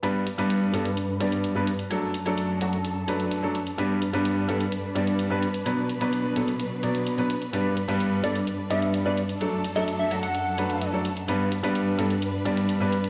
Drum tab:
HH |x-xxx-xxx-xxx-xx|x-xxx-xxx-xxx-xx|x-xxx-xxx-xxx-xx|x-xxx-xxx-xxxxxx|

HH |x-xxx-xxx-xxx-xx|x-xxx-xxx-xxx-xx|x-xxx-xxx-xxx-xx|